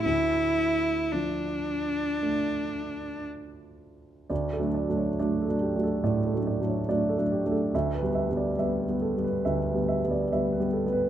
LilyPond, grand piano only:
<<
  \new Staff \with { instrumentName = "Grand piano" } { \time 4/4 \key d \minor \tempo 4 = 69 r1 | \key d \major d''16 a'16 d''16 cis''16 d''16 a'16 g'16 a'16 d''16 a'16 d''16 cis''16 d''16 a'16 g'16 a'16 | e''16 b'16 e''16 d''16 e''16 b'16 a'16 b'16 e''16 b'16 e''16 d''16 e''16 b'16 a'16 b'16 | }
  \new Staff \with { instrumentName = "Grand piano" } { \time 4/4 \key d \minor d,4 f4 <a d'>2 | \key d \major \tuplet 3/2 { d,8 <fis a d'>8 <fis a d'>8 <fis a d'>8 <fis a d'>8 <fis a d'>8 a,8 <fis a d'>8 <fis a d'>8 <fis a d'>8 <fis a d'>8 <fis a d'>8 } | \tuplet 3/2 { d,8 <g b>8 <g b>8 <g b>8 <g b>8 <g b>8 d,8 <g b>8 <g b>8 <g b>8 <g b>8 <g b>8 } | }
>>